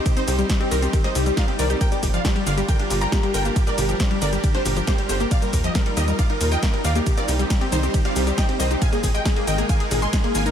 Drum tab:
RD |x---x---x---x---|x---x---x---x---|x---x---x---x---|x---x---x---x---|
HH |xxoxxxoxxxoxxxox|xxoxxxoxxxoxxxox|xxoxxxoxxxoxxxox|xxoxxxoxxxoxxxox|
SH |xxxxx-xxx-xxx-xx|xxxxx-xxx-xxx-xx|xxxxx-xxx-xxx-xx|xxxxx-xxx-xxx-xx|
SD |----o----o--o---|----o-------o---|----o----o--o---|----o-------o---|
BD |o---o---o---o---|o-o-o---o---o---|o---o---o---o---|o-o-o---o---o---|

RD |x---x---x---x---|x---x---x---x---|
HH |xxoxxxoxxxoxxxox|xxoxxxoxxxoxxxox|
SH |xxxxx-xxx-xxx-xx|xxxxx-xxx-xxx-xx|
SD |----o----o--o---|----o-------o---|
BD |o---o---o---o---|o-o-o---o---o---|